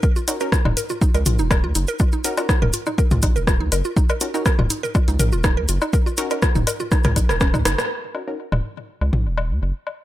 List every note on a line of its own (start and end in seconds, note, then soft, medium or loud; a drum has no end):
0.03 0.07 A#4 loud
0.03 kick loud
0.03 cabasa medium
0.16 0.19 F4 medium
0.16 cabasa soft
0.28 0.35 C#4 medium
0.28 0.35 D#4 medium
0.28 0.31 D#4 medium
0.28 0.35 F#4 medium
0.28 0.35 A#4 medium
0.28 closed hi-hat medium
0.28 cabasa medium
0.28 low woodblock soft
0.40 0.51 C#4 loud
0.40 0.51 D#4 medium
0.40 0.51 F#4 medium
0.40 0.51 A#4 loud
0.40 0.44 A#4 loud
0.40 cabasa soft
0.52 0.56 F4 medium
0.52 kick loud
0.52 cross-stick medium
0.52 cabasa medium
0.65 0.74 D#1 loud
0.65 0.69 D#4 medium
0.65 mid tom medium
0.65 low woodblock medium
0.77 0.81 A#4 loud
0.77 closed hi-hat medium
0.77 cabasa medium
0.89 0.93 F4 medium
0.89 cabasa soft
1.01 1.05 D#4 medium
1.01 kick loud
1.01 cabasa medium
1.14 1.24 C#2 loud
1.14 1.18 A#4 loud
1.14 closed hi-hat soft
1.14 cabasa soft
1.14 low woodblock soft
1.26 1.41 A#1 medium
1.26 1.30 F4 medium
1.26 closed hi-hat medium
1.26 mid tom medium
1.26 cabasa loud
1.39 1.65 D#1 medium
1.39 1.42 D#4 medium
1.39 cabasa soft
1.51 1.54 A#4 loud
1.51 kick loud
1.51 cross-stick medium
1.51 cabasa medium
1.51 low woodblock medium
1.64 1.73 D#2 medium
1.64 1.67 F4 medium
1.75 1.86 F#1 medium
1.75 1.79 D#4 medium
1.75 closed hi-hat loud
1.75 cabasa medium
1.87 1.92 A#4 loud
1.87 cabasa soft
1.99 2.04 F4 medium
1.99 kick loud
1.99 cabasa medium
1.99 low woodblock soft
2.12 2.16 D#4 medium
2.12 cabasa soft
2.24 2.35 C#4 loud
2.24 2.36 D#4 medium
2.24 2.35 F#4 medium
2.24 2.35 A#4 loud
2.24 2.28 A#4 loud
2.24 closed hi-hat medium
2.24 cabasa medium
2.37 2.48 C#4 medium
2.37 2.48 D#4 medium
2.37 2.41 F4 medium
2.37 2.48 F#4 medium
2.37 2.48 A#4 medium
2.37 closed hi-hat soft
2.37 cabasa soft
2.37 low woodblock medium
2.49 2.53 D#4 medium
2.49 kick loud
2.49 cross-stick medium
2.49 cabasa medium
2.62 2.71 D#1 loud
2.62 2.65 A#4 loud
2.62 mid tom medium
2.73 2.77 F4 medium
2.73 closed hi-hat medium
2.73 cabasa medium
2.86 2.90 D#4 medium
2.86 cabasa soft
2.86 low woodblock soft
2.98 3.02 A#4 loud
2.98 kick loud
2.98 cabasa soft
3.11 3.20 C#2 loud
3.11 3.15 F4 medium
3.11 closed hi-hat soft
3.11 mid tom medium
3.11 cabasa soft
3.22 3.37 A#1 medium
3.22 3.27 D#4 medium
3.22 kick medium
3.22 closed hi-hat medium
3.22 cabasa loud
3.22 low woodblock medium
3.36 3.62 D#1 medium
3.36 3.39 A#4 loud
3.36 cabasa soft
3.47 3.51 F4 medium
3.47 kick loud
3.47 cross-stick medium
3.47 cabasa medium
3.60 3.70 D#2 medium
3.60 3.64 D#4 medium
3.72 3.82 F#1 medium
3.72 3.76 A#4 loud
3.72 closed hi-hat loud
3.72 cabasa medium
3.72 low woodblock soft
3.85 3.88 F4 medium
3.85 cabasa soft
3.97 4.00 D#4 medium
3.97 kick loud
3.97 cabasa medium
4.09 4.13 A#4 loud
4.09 cabasa soft
4.09 low woodblock medium
4.21 4.28 C#4 medium
4.21 4.28 D#4 medium
4.21 4.25 F4 medium
4.21 4.28 F#4 medium
4.21 4.28 A#4 loud
4.21 closed hi-hat medium
4.21 cabasa medium
4.34 4.45 C#4 loud
4.34 4.37 D#4 medium
4.34 4.45 D#4 medium
4.34 4.45 F#4 medium
4.34 4.45 A#4 loud
4.34 cabasa soft
4.46 4.49 A#4 loud
4.46 kick loud
4.46 cross-stick medium
4.46 cabasa medium
4.59 4.68 D#1 loud
4.59 4.62 F4 medium
4.59 mid tom medium
4.59 low woodblock soft
4.70 4.74 D#4 medium
4.70 closed hi-hat medium
4.70 cabasa medium
4.83 4.87 A#4 loud
4.83 cabasa soft
4.95 4.99 F4 medium
4.95 kick loud
4.95 cabasa medium
4.95 low woodblock medium
5.08 5.17 C#2 loud
5.08 5.11 D#4 medium
5.08 closed hi-hat soft
5.08 cabasa soft
5.19 5.34 A#1 loud
5.19 5.23 A#4 loud
5.19 closed hi-hat medium
5.19 mid tom medium
5.19 cabasa loud
5.32 5.59 D#1 medium
5.32 5.36 F4 medium
5.32 cabasa soft
5.44 5.48 D#4 medium
5.44 kick loud
5.44 cross-stick medium
5.44 cabasa soft
5.44 low woodblock soft
5.57 5.66 D#2 medium
5.57 5.60 A#4 loud
5.68 5.79 F#1 medium
5.68 5.72 F4 medium
5.68 closed hi-hat medium
5.68 cabasa medium
5.81 5.85 D#4 medium
5.81 cabasa soft
5.81 low woodblock medium
5.93 5.97 A#4 loud
5.93 kick loud
5.93 cabasa medium
6.06 6.10 F4 medium
6.06 cabasa soft
6.17 6.29 C#4 loud
6.17 6.29 D#4 medium
6.17 6.22 D#4 medium
6.17 6.29 F#4 loud
6.17 6.29 A#4 loud
6.17 closed hi-hat medium
6.17 cabasa medium
6.31 6.41 C#4 medium
6.31 6.41 D#4 medium
6.31 6.41 F#4 medium
6.31 6.41 A#4 medium
6.31 6.34 A#4 loud
6.31 closed hi-hat soft
6.31 cabasa soft
6.31 low woodblock soft
6.42 6.46 F4 medium
6.42 kick loud
6.42 cross-stick medium
6.42 cabasa medium
6.55 6.65 D#1 loud
6.55 6.59 D#4 medium
6.55 mid tom medium
6.55 cabasa soft
6.67 6.71 A#4 loud
6.67 closed hi-hat loud
6.67 cabasa medium
6.67 low woodblock medium
6.80 6.83 F4 medium
6.80 cabasa soft
6.92 6.95 D#4 medium
6.92 kick loud
6.92 cross-stick medium
6.92 cabasa medium
7.04 7.14 C#2 loud
7.04 7.08 A#4 loud
7.04 cross-stick medium
7.04 closed hi-hat soft
7.04 mid tom loud
7.04 cabasa soft
7.16 7.31 A#1 medium
7.16 7.18 D#4 medium
7.16 kick medium
7.16 closed hi-hat medium
7.16 cabasa medium
7.16 low woodblock soft
7.29 7.55 D#1 medium
7.29 7.34 A#4 loud
7.29 cross-stick medium
7.29 cabasa soft
7.41 7.45 C#4 loud
7.41 kick loud
7.41 cross-stick medium
7.41 cabasa soft
7.54 7.63 D#2 medium
7.54 7.59 D#4 medium
7.54 mid tom medium
7.54 cabasa soft
7.54 low woodblock medium
7.65 7.76 F#1 medium
7.65 7.69 D#4 loud
7.65 cross-stick loud
7.65 closed hi-hat loud
7.65 cabasa medium
7.78 cross-stick medium
7.78 cabasa soft
8.15 8.22 C#4 medium
8.15 8.22 D#4 medium
8.15 8.22 F#4 medium
8.15 8.22 A#4 medium
8.15 low woodblock soft
8.28 8.38 C#4 medium
8.28 8.38 D#4 medium
8.28 8.38 F#4 medium
8.28 8.38 A#4 loud
8.52 8.61 D#1 loud
8.52 mid tom medium
8.52 low woodblock medium
9.01 9.11 C#2 loud
9.01 low woodblock soft
9.13 9.27 A#1 medium
9.13 mid tom medium
9.26 9.52 D#1 medium
9.38 low woodblock medium
9.51 9.60 D#2 medium
9.62 9.72 F#1 medium
9.87 low woodblock soft